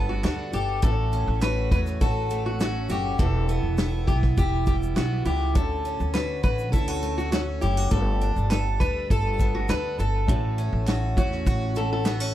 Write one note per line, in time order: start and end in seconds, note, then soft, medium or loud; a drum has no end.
0.00 0.20 G1 loud
0.00 0.82 G3 medium
0.00 0.89 B3 medium
0.00 0.23 D4 medium
0.00 0.53 A4 medium
0.09 0.23 F#4 medium
0.23 0.51 D2 loud
0.23 0.89 D4 medium
0.23 0.53 F#4 loud
0.23 snare loud
0.23 clap medium
0.23 shaker medium
0.53 0.81 G1 medium
0.53 0.83 G4 medium
0.53 1.42 A4 medium
0.53 shaker medium
0.82 1.24 A1 loud
0.82 3.19 A2 medium
0.82 3.15 A3 medium
0.82 3.15 C#4 medium
0.82 3.16 E4 medium
0.82 3.16 F#4 medium
0.82 1.42 A4 loud
0.82 kick loud
0.82 shaker medium
0.86 0.91 B4 medium
0.92 3.20 C#5 medium
1.13 1.71 C#4 medium
1.13 shaker medium
1.28 1.68 A1 loud
1.41 2.00 F#4 medium
1.41 1.71 B4 loud
1.41 snare loud
1.41 clap medium
1.41 shaker medium
1.71 1.99 E2 loud
1.71 2.59 C#4 medium
1.71 1.80 B4 loud
1.71 kick medium
1.71 shaker medium
1.86 snare soft
1.86 shaker medium
2.01 2.86 A1 loud
2.01 2.89 F#4 medium
2.01 2.45 A4 loud
2.01 kick loud
2.01 shaker medium
2.30 3.25 A3 medium
2.30 shaker medium
2.46 2.60 F#4 medium
2.60 3.25 C#4 medium
2.60 2.91 F#4 loud
2.60 snare loud
2.60 clap medium
2.60 shaker medium
2.89 3.17 F#1 medium
2.89 3.25 F#4 medium
2.89 3.18 G4 medium
2.89 shaker medium
3.18 3.60 E1 loud
3.18 5.56 E2 medium
3.18 5.51 E4 medium
3.18 5.52 G4 medium
3.18 4.07 A4 loud
3.18 kick loud
3.18 shaker medium
3.22 5.53 B4 medium
3.49 4.07 B3 medium
3.49 shaker medium
3.63 4.04 E1 medium
3.77 4.36 E4 medium
3.77 snare loud
3.77 clap medium
3.77 shaker medium
4.07 4.35 B1 medium
4.07 4.95 B3 medium
4.07 4.15 G4 medium
4.07 kick loud
4.07 shaker medium
4.22 kick medium
4.22 snare soft
4.37 4.92 E1 loud
4.37 5.24 E4 medium
4.37 4.66 G4 medium
4.37 kick loud
4.37 shaker medium
4.66 5.61 G3 medium
4.66 4.75 G4 medium
4.66 kick loud
4.66 shaker medium
4.83 shaker medium
4.96 5.24 B1 loud
4.96 5.61 B3 medium
4.96 5.24 F#4 medium
4.96 snare loud
4.96 clap medium
4.96 shaker medium
5.25 5.53 C#2 medium
5.25 5.61 E4 medium
5.25 5.54 G4 medium
5.25 shaker medium
5.54 5.96 D2 loud
5.54 7.91 D3 medium
5.54 7.87 A3 medium
5.54 7.87 C#4 medium
5.54 7.88 D4 medium
5.54 7.88 F#4 medium
5.54 6.13 A4 loud
5.54 kick loud
5.54 shaker medium
5.58 7.89 C#5 medium
5.85 6.42 C#4 medium
5.85 shaker medium
6.00 6.41 D2 loud
6.00 shaker soft
6.14 6.72 F#4 medium
6.14 6.42 B4 loud
6.14 snare loud
6.14 clap medium
6.14 shaker medium
6.43 6.74 A1 medium
6.43 7.31 C#4 medium
6.43 6.71 B4 loud
6.43 kick loud
6.43 shaker medium
6.58 shaker medium
6.72 7.58 D2 loud
6.72 6.88 E4 medium
6.72 7.17 A4 medium
6.72 kick loud
6.72 shaker medium
6.88 7.62 F#4 medium
7.02 9.40 A3 medium
7.02 shaker medium
7.18 7.31 F#4 medium
7.18 shaker medium
7.32 7.98 C#4 medium
7.32 7.40 F#4 loud
7.32 snare loud
7.32 clap medium
7.32 shaker medium
7.61 7.90 F#1 medium
7.61 7.77 E4 medium
7.61 7.91 G4 medium
7.61 shaker medium
7.77 7.98 F#4 medium
7.90 8.33 G1 loud
7.90 10.28 G3 medium
7.90 10.23 A3 medium
7.90 10.24 B3 medium
7.90 10.24 D4 medium
7.90 10.24 G4 medium
7.90 8.50 A4 loud
7.90 kick loud
7.90 shaker medium
7.94 7.99 A#4 medium
8.01 10.28 B4 medium
8.21 8.80 D4 medium
8.21 shaker medium
8.36 8.77 G1 loud
8.36 shaker soft
8.50 9.11 A4 medium
8.50 8.58 B4 medium
8.50 snare loud
8.50 clap medium
8.50 shaker medium
8.80 9.08 D2 loud
8.80 9.69 D4 medium
8.80 9.10 B4 loud
8.80 kick medium
8.80 shaker medium
9.10 9.65 G1 loud
9.10 9.56 A4 medium
9.10 10.00 A4 medium
9.10 kick loud
9.10 shaker medium
9.39 10.34 B3 medium
9.39 kick loud
9.39 shaker medium
9.55 9.70 F#4 medium
9.69 9.96 D2 loud
9.69 10.35 D4 medium
9.69 9.99 B4 loud
9.69 snare loud
9.69 clap medium
9.69 shaker medium
9.99 10.26 G1 medium
9.99 11.13 A4 loud
9.99 10.87 A4 medium
9.99 shaker medium
10.27 10.69 A1 loud
10.27 12.34 A2 medium
10.27 12.34 A3 medium
10.27 12.34 C#4 medium
10.27 12.34 E4 medium
10.27 12.34 F#4 medium
10.27 12.34 C#5 medium
10.27 kick loud
10.27 shaker medium
10.58 11.16 C#4 medium
10.58 shaker medium
10.73 11.13 A1 loud
10.87 11.46 F#4 medium
10.87 snare loud
10.87 clap medium
10.87 shaker medium
11.17 11.44 E2 loud
11.17 12.05 C#4 medium
11.17 11.72 F#4 medium
11.17 kick loud
11.17 shaker medium
11.32 snare soft
11.47 12.31 A1 loud
11.47 12.34 F#4 medium
11.47 kick loud
11.47 shaker medium
11.75 12.34 A3 medium
11.75 11.91 A4 medium
11.75 shaker medium
11.93 12.06 A4 medium
12.05 12.20 B3 medium
12.05 12.34 F#4 medium
12.05 snare loud
12.05 clap medium
12.05 shaker medium
12.20 12.34 C#4 medium